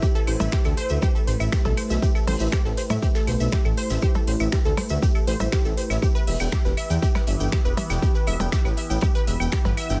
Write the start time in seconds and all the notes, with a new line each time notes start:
Already playing: A3 E4 B4
0.02 G4, kick, closed hi-hat, shaker
0.15 A4, shaker
0.27 A1 C5, closed hi-hat, open hi-hat, claves
0.40 A1 E5, percussion blips, shaker
0.52 G4, finger snap, kick, snare, closed hi-hat, shaker
0.64 D2 A4, snare, claves, shaker
0.77 C5, closed hi-hat, open hi-hat
0.89 D2 E5, shaker
1.02 G4, kick, closed hi-hat, percussion blips, claves, shaker
1.15 A4, shaker
1.27 A1 C5, closed hi-hat, open hi-hat
1.40 A1 E5, claves, shaker
1.52 G4, finger snap, kick, snare, closed hi-hat, shaker
1.65 B1 A4, snare, percussion blips, shaker
1.77 C5, closed hi-hat, open hi-hat, claves
1.90 B1 E5, snare, shaker
2.02 G4, kick, closed hi-hat, shaker
2.15 A4, claves, shaker
2.27 A1 C5, open hi-hat, percussion blips
2.40 A1 E5, shaker
2.52 G4, finger snap, kick, snare, claves, shaker
2.65 A1 A4, snare, shaker
2.77 C5, closed hi-hat, open hi-hat
2.90 A2 E5, closed hi-hat, percussion blips, claves, shaker
3.02 G4, kick, closed hi-hat, shaker
3.15 A4, finger snap, snare, shaker
3.27 B1 C5, closed hi-hat, open hi-hat, claves
3.40 B1 E5, shaker
3.52 G4, finger snap, kick, snare, closed hi-hat, percussion blips, shaker
3.65 A1 A4, claves, shaker
3.77 C5, closed hi-hat, open hi-hat
3.90 A1 E5, snare, shaker
4.02 G4, kick, closed hi-hat, claves, shaker
4.14 A4, percussion blips, shaker
4.27 A1 C5, closed hi-hat, open hi-hat
4.40 A1 E5, claves, shaker
4.52 G4, finger snap, kick, snare, closed hi-hat, shaker
4.65 D2 A4, snare, shaker
4.77 C5, closed hi-hat, open hi-hat, percussion blips, claves
4.89 D2 E5, shaker
5.02 G4, kick, closed hi-hat, shaker
5.15 A4, claves, shaker
5.27 A1 C5, closed hi-hat, open hi-hat
5.40 A1 E5, percussion blips, shaker
5.52 G4, finger snap, kick, snare, closed hi-hat, claves, shaker
5.65 A1 A4, snare, shaker
5.77 C5, closed hi-hat, open hi-hat
5.90 A1 E5, snare, claves, shaker
6.02 E3 B3 G4, kick, closed hi-hat, claves, shaker
6.15 B4, shaker
6.27 E1 E5, open hi-hat
6.40 E1 G5, claves, shaker
6.52 G4, finger snap, kick, snare, percussion blips, shaker
6.65 E1 B4, snare, shaker
6.77 E5, closed hi-hat, open hi-hat, claves
6.90 E2 G5, closed hi-hat, shaker
7.02 G4, kick, closed hi-hat, shaker
7.15 B4, finger snap, snare, percussion blips, claves, shaker
7.27 G1 E5, closed hi-hat, open hi-hat
7.40 G1 G5, shaker
7.52 G4, finger snap, kick, snare, closed hi-hat, claves, shaker
7.65 E1 B4, shaker
7.77 E5, closed hi-hat, open hi-hat, percussion blips
7.90 E1 G5, snare, claves, shaker
8.02 G4, kick, closed hi-hat, shaker
8.15 B4, shaker
8.27 E1 E5, closed hi-hat, open hi-hat, claves
8.40 E1 G5, percussion blips, shaker
8.52 G4, finger snap, kick, snare, closed hi-hat, shaker
8.65 A1 B4, snare, claves, shaker
8.77 E5, closed hi-hat, open hi-hat
8.90 A1 G5, shaker
9.01 G4, kick, closed hi-hat, percussion blips, claves, shaker
9.15 B4, shaker
9.27 E1 E5, closed hi-hat, open hi-hat
9.40 E1 G5, claves, shaker
9.52 G4, finger snap, kick, snare, closed hi-hat, shaker
9.65 G1 B4, snare, percussion blips, shaker
9.77 E5, closed hi-hat, open hi-hat, claves
9.89 G1 G5, snare, shaker